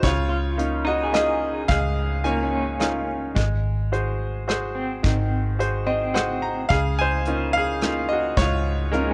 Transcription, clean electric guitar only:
0, 0, Header, 1, 2, 480
1, 0, Start_track
1, 0, Key_signature, -5, "major"
1, 0, Tempo, 556586
1, 25, Time_signature, 3, 2, 24, 8
1, 7879, End_track
2, 0, Start_track
2, 0, Title_t, "Clean electric guitar"
2, 0, Program_c, 0, 27
2, 0, Note_on_c, 0, 66, 48
2, 112, Note_off_c, 0, 66, 0
2, 253, Note_on_c, 0, 65, 45
2, 730, Note_on_c, 0, 63, 75
2, 888, Note_off_c, 0, 65, 0
2, 891, Note_on_c, 0, 68, 46
2, 1400, Note_off_c, 0, 63, 0
2, 1541, Note_off_c, 0, 68, 0
2, 1929, Note_on_c, 0, 58, 40
2, 2097, Note_on_c, 0, 61, 51
2, 2604, Note_off_c, 0, 58, 0
2, 2749, Note_off_c, 0, 61, 0
2, 4096, Note_on_c, 0, 60, 57
2, 4765, Note_off_c, 0, 60, 0
2, 5058, Note_on_c, 0, 60, 51
2, 5723, Note_off_c, 0, 60, 0
2, 7689, Note_on_c, 0, 56, 52
2, 7879, Note_off_c, 0, 56, 0
2, 7879, End_track
0, 0, End_of_file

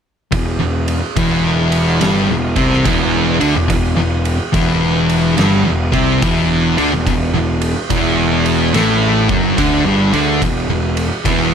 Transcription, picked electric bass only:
0, 0, Header, 1, 2, 480
1, 0, Start_track
1, 0, Key_signature, 1, "minor"
1, 0, Tempo, 840336
1, 190, Time_signature, 4, 2, 24, 8
1, 6592, End_track
2, 0, Start_track
2, 0, Title_t, "Picked electric bass"
2, 0, Program_c, 0, 34
2, 186, Note_on_c, 0, 28, 78
2, 335, Note_off_c, 0, 28, 0
2, 344, Note_on_c, 0, 28, 79
2, 570, Note_off_c, 0, 28, 0
2, 668, Note_on_c, 0, 28, 98
2, 1129, Note_off_c, 0, 28, 0
2, 1148, Note_on_c, 0, 31, 93
2, 1298, Note_off_c, 0, 31, 0
2, 1307, Note_on_c, 0, 28, 79
2, 1457, Note_off_c, 0, 28, 0
2, 1466, Note_on_c, 0, 36, 87
2, 1621, Note_off_c, 0, 36, 0
2, 1631, Note_on_c, 0, 28, 93
2, 1927, Note_off_c, 0, 28, 0
2, 1950, Note_on_c, 0, 38, 84
2, 2026, Note_off_c, 0, 38, 0
2, 2029, Note_on_c, 0, 28, 77
2, 2108, Note_off_c, 0, 28, 0
2, 2112, Note_on_c, 0, 28, 83
2, 2261, Note_off_c, 0, 28, 0
2, 2268, Note_on_c, 0, 28, 78
2, 2494, Note_off_c, 0, 28, 0
2, 2594, Note_on_c, 0, 28, 97
2, 3052, Note_off_c, 0, 28, 0
2, 3077, Note_on_c, 0, 31, 94
2, 3223, Note_off_c, 0, 31, 0
2, 3239, Note_on_c, 0, 28, 80
2, 3384, Note_off_c, 0, 28, 0
2, 3391, Note_on_c, 0, 36, 91
2, 3544, Note_off_c, 0, 36, 0
2, 3556, Note_on_c, 0, 28, 96
2, 3849, Note_off_c, 0, 28, 0
2, 3876, Note_on_c, 0, 38, 83
2, 3950, Note_off_c, 0, 38, 0
2, 3955, Note_on_c, 0, 28, 83
2, 4030, Note_off_c, 0, 28, 0
2, 4036, Note_on_c, 0, 28, 80
2, 4182, Note_off_c, 0, 28, 0
2, 4192, Note_on_c, 0, 28, 83
2, 4415, Note_off_c, 0, 28, 0
2, 4516, Note_on_c, 0, 28, 102
2, 4971, Note_off_c, 0, 28, 0
2, 4992, Note_on_c, 0, 33, 91
2, 5285, Note_off_c, 0, 33, 0
2, 5309, Note_on_c, 0, 30, 86
2, 5460, Note_off_c, 0, 30, 0
2, 5473, Note_on_c, 0, 38, 96
2, 5618, Note_off_c, 0, 38, 0
2, 5630, Note_on_c, 0, 31, 88
2, 5776, Note_off_c, 0, 31, 0
2, 5786, Note_on_c, 0, 38, 83
2, 5938, Note_off_c, 0, 38, 0
2, 5952, Note_on_c, 0, 28, 84
2, 6097, Note_off_c, 0, 28, 0
2, 6108, Note_on_c, 0, 28, 80
2, 6330, Note_off_c, 0, 28, 0
2, 6429, Note_on_c, 0, 28, 97
2, 6592, Note_off_c, 0, 28, 0
2, 6592, End_track
0, 0, End_of_file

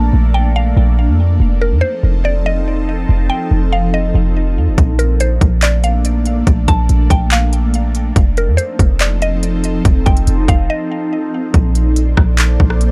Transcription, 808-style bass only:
0, 0, Header, 1, 2, 480
1, 0, Start_track
1, 0, Key_signature, -2, "major"
1, 0, Tempo, 422535
1, 1590, Time_signature, 4, 2, 24, 8
1, 14671, End_track
2, 0, Start_track
2, 0, Title_t, "808-style bass"
2, 0, Program_c, 0, 38
2, 0, Note_on_c, 0, 34, 112
2, 131, Note_off_c, 0, 34, 0
2, 149, Note_on_c, 0, 34, 101
2, 841, Note_off_c, 0, 34, 0
2, 870, Note_on_c, 0, 34, 107
2, 1231, Note_on_c, 0, 41, 98
2, 1248, Note_off_c, 0, 34, 0
2, 1573, Note_off_c, 0, 41, 0
2, 1590, Note_on_c, 0, 29, 103
2, 1950, Note_on_c, 0, 41, 101
2, 1967, Note_off_c, 0, 29, 0
2, 2064, Note_off_c, 0, 41, 0
2, 2311, Note_on_c, 0, 29, 103
2, 3465, Note_off_c, 0, 29, 0
2, 3511, Note_on_c, 0, 29, 107
2, 3741, Note_off_c, 0, 29, 0
2, 3989, Note_on_c, 0, 29, 105
2, 4681, Note_off_c, 0, 29, 0
2, 4709, Note_on_c, 0, 29, 106
2, 5190, Note_on_c, 0, 41, 94
2, 5207, Note_off_c, 0, 29, 0
2, 5310, Note_on_c, 0, 29, 97
2, 5327, Note_off_c, 0, 41, 0
2, 5424, Note_off_c, 0, 29, 0
2, 5429, Note_on_c, 0, 34, 107
2, 6121, Note_off_c, 0, 34, 0
2, 6148, Note_on_c, 0, 34, 103
2, 7304, Note_off_c, 0, 34, 0
2, 7349, Note_on_c, 0, 34, 109
2, 7581, Note_off_c, 0, 34, 0
2, 7592, Note_on_c, 0, 34, 107
2, 7822, Note_off_c, 0, 34, 0
2, 7831, Note_on_c, 0, 34, 100
2, 8061, Note_off_c, 0, 34, 0
2, 8069, Note_on_c, 0, 34, 100
2, 9224, Note_off_c, 0, 34, 0
2, 9270, Note_on_c, 0, 29, 98
2, 9631, Note_on_c, 0, 41, 101
2, 9648, Note_off_c, 0, 29, 0
2, 9745, Note_off_c, 0, 41, 0
2, 9988, Note_on_c, 0, 29, 106
2, 11144, Note_off_c, 0, 29, 0
2, 11190, Note_on_c, 0, 29, 105
2, 11421, Note_off_c, 0, 29, 0
2, 11432, Note_on_c, 0, 29, 104
2, 11662, Note_off_c, 0, 29, 0
2, 11671, Note_on_c, 0, 29, 104
2, 11902, Note_off_c, 0, 29, 0
2, 11909, Note_on_c, 0, 29, 106
2, 12140, Note_off_c, 0, 29, 0
2, 13111, Note_on_c, 0, 34, 108
2, 13802, Note_off_c, 0, 34, 0
2, 13829, Note_on_c, 0, 34, 102
2, 14291, Note_off_c, 0, 34, 0
2, 14313, Note_on_c, 0, 34, 108
2, 14671, Note_off_c, 0, 34, 0
2, 14671, End_track
0, 0, End_of_file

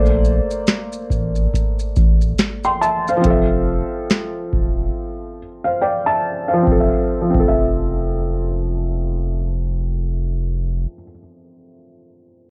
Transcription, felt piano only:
0, 0, Header, 1, 2, 480
1, 0, Start_track
1, 0, Key_signature, -1, "major"
1, 0, Tempo, 857143
1, 1814, Time_signature, 4, 2, 24, 8
1, 7001, End_track
2, 0, Start_track
2, 0, Title_t, "Felt piano"
2, 0, Program_c, 0, 0
2, 0, Note_on_c, 0, 57, 67
2, 0, Note_on_c, 0, 58, 68
2, 0, Note_on_c, 0, 72, 74
2, 0, Note_on_c, 0, 74, 75
2, 11, Control_c, 0, 64, 127
2, 1079, Note_off_c, 0, 72, 0
2, 1090, Note_off_c, 0, 74, 0
2, 1484, Note_on_c, 0, 84, 71
2, 1486, Note_on_c, 0, 79, 56
2, 1575, Note_off_c, 0, 84, 0
2, 1576, Note_off_c, 0, 79, 0
2, 1577, Note_on_c, 0, 81, 72
2, 1580, Note_on_c, 0, 76, 56
2, 1706, Note_off_c, 0, 81, 0
2, 1708, Note_off_c, 0, 76, 0
2, 1729, Note_on_c, 0, 77, 64
2, 1733, Note_on_c, 0, 72, 52
2, 1772, Note_off_c, 0, 58, 0
2, 1775, Note_on_c, 0, 53, 72
2, 1786, Note_off_c, 0, 57, 0
2, 1799, Note_on_c, 0, 60, 60
2, 1821, Control_c, 0, 64, 0
2, 1825, Note_on_c, 0, 69, 72
2, 1850, Note_on_c, 0, 76, 82
2, 1901, Control_c, 0, 64, 127
2, 1949, Note_off_c, 0, 77, 0
2, 1951, Note_off_c, 0, 72, 0
2, 3009, Note_off_c, 0, 76, 0
2, 3159, Note_on_c, 0, 77, 59
2, 3163, Note_on_c, 0, 72, 43
2, 3252, Note_off_c, 0, 77, 0
2, 3255, Note_off_c, 0, 72, 0
2, 3256, Note_on_c, 0, 79, 64
2, 3259, Note_on_c, 0, 74, 54
2, 3386, Note_off_c, 0, 79, 0
2, 3387, Note_off_c, 0, 74, 0
2, 3394, Note_on_c, 0, 81, 76
2, 3398, Note_on_c, 0, 76, 55
2, 3621, Note_off_c, 0, 81, 0
2, 3623, Note_off_c, 0, 76, 0
2, 3629, Note_on_c, 0, 77, 53
2, 3632, Note_on_c, 0, 72, 42
2, 3650, Note_off_c, 0, 53, 0
2, 3658, Note_on_c, 0, 53, 80
2, 3701, Note_off_c, 0, 60, 0
2, 3709, Note_on_c, 0, 60, 66
2, 3717, Note_off_c, 0, 69, 0
2, 3742, Control_c, 0, 64, 0
2, 3760, Note_on_c, 0, 69, 68
2, 3809, Note_on_c, 0, 76, 74
2, 3841, Note_off_c, 0, 53, 0
2, 3849, Control_c, 0, 64, 127
2, 3858, Note_off_c, 0, 77, 0
2, 3860, Note_off_c, 0, 72, 0
2, 3868, Note_off_c, 0, 60, 0
2, 3895, Note_off_c, 0, 69, 0
2, 3921, Note_off_c, 0, 76, 0
2, 4040, Note_on_c, 0, 53, 70
2, 4089, Note_on_c, 0, 60, 62
2, 4141, Note_on_c, 0, 69, 63
2, 4189, Note_on_c, 0, 76, 84
2, 6121, Note_off_c, 0, 53, 0
2, 6169, Note_off_c, 0, 60, 0
2, 6222, Note_off_c, 0, 69, 0
2, 6269, Note_off_c, 0, 76, 0
2, 7001, End_track
0, 0, End_of_file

